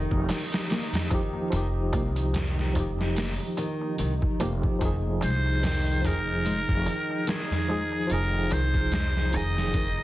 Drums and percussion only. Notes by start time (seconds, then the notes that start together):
0.11 kick, darbuka tek
0.29 snare, open hi-hat, darbuka tek
0.52 snare, open hi-hat, darbuka tek
0.70 snare, open hi-hat, darbuka tek
0.93 snare, open hi-hat, darbuka tek, darbuka dum
1.10 kick, closed hi-hat, darbuka tek
1.34 darbuka tek
1.52 closed hi-hat, darbuka tek
1.93 kick, closed hi-hat, darbuka tek
2.16 closed hi-hat, darbuka tek
2.33 snare, closed hi-hat, darbuka tek, darbuka dum
2.59 snare
2.75 closed hi-hat, darbuka tek, darbuka dum
2.99 snare, darbuka tek
3.16 snare, open hi-hat, darbuka tek
3.40 darbuka tek
3.57 closed hi-hat, darbuka tek
3.81 darbuka tek
3.98 closed hi-hat, darbuka tek
4.22 kick, darbuka tek
4.40 closed hi-hat, darbuka tek
4.63 kick, darbuka tek
4.81 kick, closed hi-hat, darbuka tek
5.21 closed hi-hat, darbuka tek
5.46 darbuka tek
5.63 snare, open hi-hat, darbuka tek, darbuka dum
6.04 closed hi-hat, darbuka tek, darbuka dum
6.27 darbuka tek
6.45 closed hi-hat, darbuka tek
6.69 kick, darbuka tek
6.86 closed hi-hat, darbuka tek
7.10 darbuka tek
7.27 snare, closed hi-hat, darbuka tek
7.51 snare, darbuka tek, darbuka dum
7.69 darbuka tek
7.92 darbuka tek
8.10 closed hi-hat, darbuka tek
8.51 closed hi-hat, darbuka tek
8.74 kick, darbuka tek
8.92 snare, closed hi-hat, darbuka tek, darbuka dum
9.17 snare
9.33 closed hi-hat, darbuka tek, darbuka dum
9.56 snare, darbuka tek
9.74 kick, closed hi-hat, darbuka tek
9.98 darbuka tek